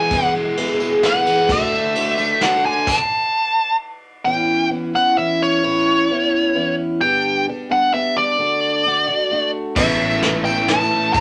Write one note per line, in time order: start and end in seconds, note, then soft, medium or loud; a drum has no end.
0.00 0.10 E3 medium
0.00 0.57 E3 medium
0.00 0.11 G#3 medium
0.00 0.34 G#3 medium
0.00 0.12 B3 medium
0.00 0.80 B3 medium
0.00 0.12 G#4 medium
0.00 0.38 G#4 medium
0.00 0.39 B4 medium
0.00 0.39 E5 medium
0.00 0.32 G#5 medium
0.11 0.57 E2 medium
0.11 0.33 E2 medium
0.11 1.27 E2 medium
0.11 0.57 B2 medium
0.11 0.55 E3 medium
0.11 0.56 G#3 medium
0.11 0.57 B3 medium
0.11 0.58 G#4 medium
0.11 kick loud
0.11 ride medium
0.11 tambourine medium
0.35 0.79 G#3 medium
0.57 0.80 E3 medium
0.57 1.24 E3 medium
0.57 0.80 G#3 medium
0.57 0.80 B3 medium
0.57 0.94 G#4 medium
0.57 0.79 G#4 medium
0.57 0.94 B4 medium
0.57 0.94 E5 medium
0.57 ride medium
0.68 tambourine soft
0.80 1.02 E3 soft
0.80 1.49 G#3 medium
0.80 1.03 G#3 soft
0.80 1.04 B3 soft
0.80 1.03 G#4 medium
0.80 tambourine medium
1.02 1.49 E3 medium
1.02 1.50 G#3 medium
1.02 1.49 B3 medium
1.02 1.50 B3 medium
1.02 1.49 G#4 medium
1.02 1.49 B4 medium
1.02 1.49 E5 medium
1.02 1.52 F#5 medium
1.02 snare medium
1.02 ride medium
1.26 1.49 E3 medium
1.26 ride medium
1.48 1.70 D2 medium
1.48 1.93 D3 medium
1.48 1.94 D3 medium
1.48 1.96 A3 medium
1.48 1.96 D4 medium
1.48 1.86 F#4 medium
1.48 1.97 F#4 medium
1.48 1.86 A4 medium
1.48 1.86 D5 medium
1.48 2.45 E5 medium
1.48 kick loud
1.48 ride medium
1.48 tambourine medium
1.72 2.16 A3 medium
1.94 2.64 D3 medium
1.94 2.18 D3 medium
1.94 2.19 A3 medium
1.94 2.18 D4 medium
1.94 2.32 F#4 medium
1.94 2.17 F#4 medium
1.94 2.32 A4 medium
1.94 2.32 C#5 medium
1.94 ride medium
2.07 tambourine soft
2.18 2.87 A3 medium
2.18 2.42 A3 soft
2.18 2.42 D4 medium
2.18 2.41 F#4 medium
2.18 tambourine medium
2.41 2.88 D3 medium
2.41 2.88 A3 medium
2.41 2.87 D4 medium
2.41 2.89 D4 medium
2.41 2.87 F#4 medium
2.41 2.89 F#4 medium
2.41 2.87 A4 medium
2.41 2.88 C#5 medium
2.41 2.63 F#5 medium
2.41 snare medium
2.41 ride medium
2.65 2.87 D3 medium
2.65 2.86 G#5 loud
2.87 3.76 A5 loud
2.87 kick loud
2.87 crash loud
4.25 4.71 A2 medium
4.25 4.69 E3 medium
4.25 4.70 B3 medium
4.25 4.70 C#4 medium
4.25 4.71 E4 medium
4.25 4.68 G5 loud
4.70 4.93 E3 medium
4.70 4.94 B3 medium
4.70 4.94 C#4 medium
4.70 4.92 E4 medium
4.93 5.16 B3 soft
4.93 5.16 C#4 medium
4.93 5.17 E4 soft
4.93 5.18 F#5 loud
5.16 5.62 E3 medium
5.16 5.63 B3 medium
5.16 5.63 C#4 medium
5.16 5.63 E4 medium
5.16 5.41 E5 loud
5.42 6.75 C#5 medium
5.63 6.09 A2 medium
5.63 6.09 E3 medium
5.63 6.10 B3 medium
5.63 6.09 C#4 medium
5.63 6.10 E4 medium
6.10 6.54 E3 medium
6.10 6.54 B3 medium
6.10 6.55 C#4 medium
6.10 6.56 E4 medium
6.55 7.01 E3 medium
6.55 7.01 B3 medium
6.55 7.01 C#4 medium
6.55 7.02 E4 medium
7.01 7.47 G2 medium
7.01 7.47 D3 medium
7.01 7.46 G3 medium
7.01 7.47 B3 medium
7.01 7.49 D4 medium
7.01 7.48 G4 medium
7.01 7.44 G5 loud
7.48 7.70 G3 medium
7.48 7.70 B3 medium
7.48 7.69 D4 medium
7.48 7.68 G4 medium
7.70 7.92 G3 soft
7.70 7.92 B3 soft
7.70 7.93 D4 medium
7.70 7.93 G4 medium
7.70 7.93 F#5 loud
7.93 8.16 G3 medium
7.93 8.16 B3 medium
7.93 8.16 D4 medium
7.93 8.15 G4 medium
7.93 8.17 E5 medium
8.16 8.38 G3 soft
8.16 8.39 B3 soft
8.16 8.38 D4 medium
8.16 8.39 G4 medium
8.16 9.50 D5 loud
8.39 8.84 D3 medium
8.39 8.86 A3 medium
8.39 8.85 D4 medium
8.39 8.86 F#4 medium
8.85 9.08 D3 medium
8.85 9.08 A3 medium
8.85 9.08 D4 medium
8.85 9.06 F#4 medium
9.07 9.30 A3 soft
9.07 9.31 D4 medium
9.07 9.30 F#4 medium
9.30 9.76 D3 medium
9.30 9.77 A3 medium
9.30 9.77 D4 medium
9.30 9.78 F#4 medium
9.76 10.64 A1 medium
9.76 11.13 A2 medium
9.76 10.23 A2 medium
9.76 10.21 E3 medium
9.76 10.01 A3 loud
9.76 10.23 B3 medium
9.76 10.22 C#4 medium
9.76 10.00 C#4 loud
9.76 10.13 E4 medium
9.76 10.23 E4 medium
9.76 10.13 A4 medium
9.76 9.98 A4 loud
9.76 10.14 B4 medium
9.76 10.14 C#5 medium
9.76 10.20 E5 loud
9.76 kick loud
9.76 tambourine loud
9.76 crash loud
9.98 10.22 A3 medium
9.98 10.24 C#4 medium
9.98 10.25 A4 medium
10.11 tambourine medium
10.21 10.68 E3 medium
10.21 10.45 E3 medium
10.21 10.47 A3 medium
10.21 10.46 B3 medium
10.21 10.45 C#4 medium
10.21 10.46 C#4 medium
10.21 10.59 E4 medium
10.21 10.44 E4 medium
10.21 10.60 A4 medium
10.21 10.44 A4 medium
10.21 10.60 B4 medium
10.21 10.59 E5 medium
10.21 snare loud
10.21 closed hi-hat medium
10.34 tambourine soft
10.45 10.93 A3 medium
10.45 10.68 B3 soft
10.45 10.69 C#4 soft
10.45 10.92 C#4 medium
10.45 10.69 E4 medium
10.45 10.90 A4 medium
10.45 10.69 G5 medium
10.45 tambourine loud
10.68 11.15 E3 medium
10.68 11.16 B3 medium
10.68 11.16 C#4 medium
10.68 11.20 E4 medium
10.68 11.16 E4 medium
10.68 11.20 A4 medium
10.68 11.20 B4 medium
10.68 11.20 C#5 medium
10.68 11.13 A5 loud
10.68 snare medium
10.68 closed hi-hat medium
10.81 tambourine medium
10.91 11.14 A3 medium
10.91 11.15 C#4 medium
10.91 11.16 A4 medium
10.91 tambourine soft
11.03 tambourine soft
11.13 11.20 A1 loud
11.13 11.20 A2 medium
11.13 11.20 E3 loud
11.13 11.20 E3 medium
11.13 11.20 A3 medium
11.13 11.20 B3 medium
11.13 11.20 C#4 loud
11.13 11.20 C#4 medium
11.13 11.20 E4 medium
11.13 11.20 A4 loud
11.13 11.20 B5 loud
11.13 kick loud
11.13 closed hi-hat medium
11.13 tambourine loud